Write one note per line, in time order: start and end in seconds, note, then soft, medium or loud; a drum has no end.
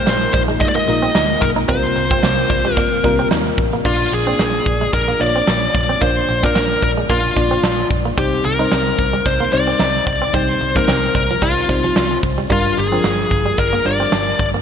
0.00 0.30 A#2 medium
0.00 0.28 G#3 medium
0.00 1.67 G#3 medium
0.00 0.29 A#3 medium
0.00 3.82 A#3 medium
0.00 0.29 D#4 medium
0.00 1.67 D#4 medium
0.00 0.29 F4 medium
0.00 0.29 A#4 medium
0.00 0.32 C5 loud
0.06 0.27 A#1 loud
0.06 0.15 A#3 medium
0.06 snare loud
0.06 tambourine medium
0.06 cowbell medium
0.21 muted clean electric guitar stroke soft
0.21 closed hi-hat medium
0.33 0.64 A#1 loud
0.33 0.41 C5 loud
0.33 kick loud
0.33 closed hi-hat medium
0.33 cowbell medium
0.48 0.55 G#3 medium
0.48 closed hi-hat medium
0.60 0.69 D#5 loud
0.60 kick medium
0.60 closed hi-hat medium
0.60 cowbell medium
0.69 0.75 D5 medium
0.75 0.82 A#3 medium
0.75 1.44 D#5 loud
0.75 closed hi-hat medium
0.88 1.08 A#1 medium
0.88 1.44 G#3 medium
0.88 1.45 A#3 medium
0.88 1.45 D#4 medium
0.88 1.45 F4 medium
0.88 1.45 A#4 medium
0.88 muted clean electric guitar stroke soft
0.88 closed hi-hat medium
1.02 1.10 C4 medium
1.02 closed hi-hat medium
1.15 1.35 D2 medium
1.15 1.23 D#4 medium
1.15 snare loud
1.15 tambourine medium
1.15 cowbell medium
1.30 closed hi-hat medium
1.41 1.61 B1 medium
1.41 1.49 A#4 medium
1.41 muted clean electric guitar stroke soft
1.41 kick loud
1.41 open hi-hat medium
1.56 1.63 D#4 medium
1.56 closed hi-hat medium
1.68 1.89 C2 loud
1.68 3.83 C3 medium
1.68 2.46 C3 medium
1.68 2.45 G3 medium
1.68 3.83 G3 medium
1.68 2.45 A#3 medium
1.68 1.77 C4 medium
1.68 2.45 C4 medium
1.68 3.83 F4 medium
1.68 2.45 F4 medium
1.68 2.45 A#4 medium
1.68 2.74 C5 medium
1.68 kick loud
1.68 closed hi-hat loud
1.68 cowbell medium
1.84 closed hi-hat medium
1.96 2.16 C2 medium
1.96 muted clean electric guitar stroke soft
1.96 closed hi-hat medium
2.11 2.18 C4 medium
2.11 kick loud
2.11 closed hi-hat medium
2.23 2.42 C2 loud
2.23 2.32 A#3 medium
2.23 snare loud
2.23 tambourine medium
2.23 cowbell medium
2.38 muted clean electric guitar stroke soft
2.38 closed hi-hat medium
2.50 2.80 C2 loud
2.50 kick loud
2.50 closed hi-hat medium
2.50 cowbell medium
2.65 2.72 G3 medium
2.65 closed hi-hat medium
2.74 2.86 A#3 medium
2.74 3.27 A#4 medium
2.74 kick medium
2.74 closed hi-hat medium
2.74 cowbell medium
2.92 closed hi-hat medium
3.04 3.24 C2 medium
3.04 3.61 G3 medium
3.04 3.61 A#3 medium
3.04 3.61 C4 medium
3.04 3.61 F4 medium
3.04 3.61 A#4 loud
3.04 muted clean electric guitar stroke soft
3.04 kick medium
3.04 closed hi-hat medium
3.04 cowbell medium
3.19 3.26 C4 medium
3.19 closed hi-hat medium
3.31 3.51 D#2 medium
3.31 3.40 D#4 medium
3.31 snare loud
3.31 tambourine medium
3.31 cowbell medium
3.46 muted clean electric guitar stroke soft
3.46 closed hi-hat medium
3.58 3.78 A1 loud
3.58 kick loud
3.58 open hi-hat medium
3.73 3.80 A#3 medium
3.73 closed hi-hat medium
3.85 4.05 A#1 medium
3.85 4.63 A#2 medium
3.85 4.13 A#3 medium
3.85 3.94 A#3 medium
3.85 4.14 D4 medium
3.85 4.14 F4 medium
3.85 4.13 F4 medium
3.85 4.14 D5 medium
3.85 kick loud
3.85 crash medium
3.85 cowbell medium
4.12 4.32 A#1 medium
4.12 4.90 G#4 medium
4.12 muted clean electric guitar stroke soft
4.12 closed hi-hat medium
4.27 4.92 A#3 medium
4.27 4.34 C4 medium
4.27 4.92 D4 medium
4.27 4.92 F4 medium
4.27 4.92 D5 medium
4.39 4.59 A#1 medium
4.39 4.48 A#3 medium
4.39 snare loud
4.39 closed hi-hat medium
4.39 cowbell medium
4.55 muted clean electric guitar stroke soft
4.66 4.86 A#1 medium
4.66 kick medium
4.66 closed hi-hat medium
4.81 4.88 G#3 medium
4.93 5.13 A#1 medium
4.93 5.22 A#4 medium
4.93 kick medium
4.93 closed hi-hat medium
4.93 cowbell medium
5.08 5.15 A#3 medium
5.20 5.40 A#1 medium
5.20 5.77 A#3 medium
5.20 5.77 D4 medium
5.20 5.77 F4 medium
5.20 5.28 C#5 medium
5.20 5.74 D5 loud
5.20 muted clean electric guitar stroke soft
5.20 closed hi-hat medium
5.20 cowbell medium
5.27 5.81 D5 medium
5.36 5.43 C4 medium
5.36 closed hi-hat soft
5.47 5.67 A#1 loud
5.47 5.56 D4 medium
5.47 snare loud
5.47 closed hi-hat medium
5.47 cowbell medium
5.75 5.94 A#1 loud
5.75 6.02 D5 medium
5.75 muted clean electric guitar stroke soft
5.75 kick medium
5.75 open hi-hat medium
5.89 5.96 C4 medium
6.01 6.21 A#1 loud
6.01 6.79 A#2 medium
6.01 6.30 A#3 medium
6.01 6.10 A#3 medium
6.01 6.30 D4 medium
6.01 6.30 F4 medium
6.01 6.45 C5 medium
6.01 6.30 D5 medium
6.01 kick loud
6.01 closed hi-hat loud
6.01 cowbell medium
6.29 6.48 A#1 medium
6.29 muted clean electric guitar stroke soft
6.29 closed hi-hat medium
6.43 7.08 A#3 medium
6.43 6.50 C4 medium
6.43 7.08 D4 medium
6.43 7.08 F4 medium
6.43 6.80 A#4 medium
6.43 7.08 D5 medium
6.43 kick medium
6.55 6.75 A#1 medium
6.55 6.64 A#3 medium
6.55 snare loud
6.55 closed hi-hat medium
6.55 cowbell medium
6.70 muted clean electric guitar stroke soft
6.82 7.02 A#1 medium
6.82 6.91 A#4 medium
6.82 kick medium
6.82 closed hi-hat medium
6.97 7.04 G#3 medium
7.09 7.29 A#1 loud
7.09 7.18 A#3 medium
7.09 7.87 F4 medium
7.09 kick medium
7.09 closed hi-hat medium
7.09 cowbell medium
7.36 7.56 A#1 medium
7.36 7.93 A#3 medium
7.36 7.93 D4 medium
7.36 7.93 F4 medium
7.36 7.94 D5 medium
7.36 muted clean electric guitar stroke soft
7.36 kick medium
7.36 closed hi-hat medium
7.36 cowbell medium
7.51 7.58 C4 medium
7.51 closed hi-hat medium
7.63 7.83 A#1 loud
7.63 7.72 D4 medium
7.63 snare loud
7.63 closed hi-hat medium
7.63 cowbell medium
7.78 muted clean electric guitar stroke soft
7.91 8.10 A#1 loud
7.91 kick medium
7.91 open hi-hat medium
8.05 8.12 A#3 medium
8.17 8.37 C2 loud
8.17 8.95 C3 medium
8.17 8.46 G3 medium
8.17 8.26 C4 medium
8.17 8.46 C4 medium
8.17 8.46 D#4 medium
8.17 8.45 G4 medium
8.17 8.47 C5 medium
8.17 kick loud
8.17 closed hi-hat loud
8.17 cowbell medium
8.44 8.64 C2 medium
8.44 9.29 A#4 loud
8.44 muted clean electric guitar stroke soft
8.44 closed hi-hat medium
8.59 9.24 G3 medium
8.59 9.24 C4 medium
8.59 8.66 D#4 medium
8.59 9.25 D#4 medium
8.59 9.25 C5 medium
8.72 8.92 C2 medium
8.72 8.80 C4 medium
8.72 snare loud
8.72 closed hi-hat medium
8.72 cowbell medium
8.86 muted clean electric guitar stroke soft
8.86 closed hi-hat soft
8.99 9.18 C2 loud
8.99 kick medium
8.99 closed hi-hat medium
9.13 9.20 G3 medium
9.25 9.45 C2 loud
9.25 9.52 C5 loud
9.25 kick medium
9.25 closed hi-hat medium
9.25 cowbell medium
9.40 9.48 A#3 medium
9.52 9.73 C2 medium
9.52 10.09 G3 medium
9.52 10.09 C4 medium
9.52 10.09 D#4 medium
9.52 10.10 C5 medium
9.52 10.03 D5 loud
9.52 muted clean electric guitar stroke soft
9.52 closed hi-hat medium
9.52 cowbell medium
9.68 9.75 C4 medium
9.79 10.00 C2 medium
9.79 9.88 D#4 medium
9.79 snare loud
9.79 closed hi-hat medium
9.79 cowbell medium
10.07 10.26 C2 loud
10.07 10.34 D5 loud
10.07 muted clean electric guitar stroke soft
10.07 kick medium
10.07 open hi-hat medium
10.22 10.29 C4 medium
10.33 10.54 C2 loud
10.33 11.11 C3 medium
10.33 10.62 G3 medium
10.33 10.62 C4 medium
10.33 10.42 C4 medium
10.33 10.62 D#4 medium
10.33 10.77 C5 medium
10.33 10.63 C5 medium
10.33 kick loud
10.33 closed hi-hat medium
10.33 cowbell medium
10.61 10.81 C2 medium
10.61 muted clean electric guitar stroke soft
10.61 closed hi-hat medium
10.75 11.40 G3 medium
10.75 10.83 A#3 medium
10.75 11.40 C4 medium
10.75 11.41 D#4 medium
10.75 11.14 A#4 medium
10.75 11.41 C5 medium
10.75 kick medium
10.88 11.08 C2 medium
10.88 10.97 C4 medium
10.88 snare loud
10.88 closed hi-hat medium
10.88 cowbell medium
11.03 muted clean electric guitar stroke soft
11.03 closed hi-hat soft
11.15 11.35 C2 medium
11.15 11.40 A#4 medium
11.15 kick medium
11.15 closed hi-hat medium
11.15 cowbell medium
11.31 11.37 F3 medium
11.42 11.62 C2 loud
11.42 11.51 G3 medium
11.42 12.19 F4 medium
11.42 kick medium
11.42 closed hi-hat medium
11.42 cowbell medium
11.68 11.89 C2 medium
11.68 12.25 G3 medium
11.68 12.26 C4 medium
11.68 12.26 D#4 medium
11.68 12.26 C5 medium
11.68 muted clean electric guitar stroke soft
11.68 kick medium
11.68 closed hi-hat medium
11.68 cowbell medium
11.84 11.91 F3 medium
11.96 12.16 C2 medium
11.96 12.05 F3 medium
11.96 snare loud
11.96 closed hi-hat medium
11.96 cowbell medium
12.11 muted clean electric guitar stroke soft
12.23 12.43 C2 medium
12.23 kick medium
12.23 open hi-hat medium
12.38 12.45 G3 medium
12.50 12.70 G1 loud
12.50 13.27 G2 medium
12.50 12.78 G3 medium
12.50 12.59 G3 medium
12.50 12.78 D4 medium
12.50 12.79 F4 medium
12.50 12.79 A#4 medium
12.50 kick loud
12.50 closed hi-hat loud
12.50 cowbell medium
12.77 12.97 G1 medium
12.77 13.59 G#4 medium
12.77 muted clean electric guitar stroke soft
12.77 closed hi-hat medium
12.92 13.57 F3 medium
12.92 12.99 C4 medium
12.92 13.57 D4 medium
12.92 13.57 F4 medium
12.92 13.57 A#4 medium
13.04 13.24 G1 loud
13.04 13.13 A#3 medium
13.04 snare loud
13.04 closed hi-hat medium
13.04 cowbell medium
13.19 muted clean electric guitar stroke soft
13.31 13.51 G1 loud
13.31 kick medium
13.31 closed hi-hat medium
13.46 13.53 G3 medium
13.58 13.78 G1 loud
13.58 13.84 A#4 medium
13.58 kick medium
13.58 closed hi-hat medium
13.58 cowbell medium
13.73 13.80 A#3 medium
13.85 14.05 G1 medium
13.85 14.42 G3 medium
13.85 14.42 D4 medium
13.85 14.42 F4 medium
13.85 14.42 A#4 medium
13.85 14.39 D5 loud
13.85 muted clean electric guitar stroke soft
13.85 closed hi-hat medium
13.85 cowbell medium
14.00 14.07 C4 medium
14.12 14.32 G1 loud
14.12 14.21 D4 medium
14.12 snare loud
14.12 closed hi-hat medium
14.12 cowbell medium
14.39 14.59 G1 medium
14.39 14.48 D5 loud
14.39 muted clean electric guitar stroke soft
14.39 kick loud
14.39 open hi-hat medium
14.54 14.61 A#3 medium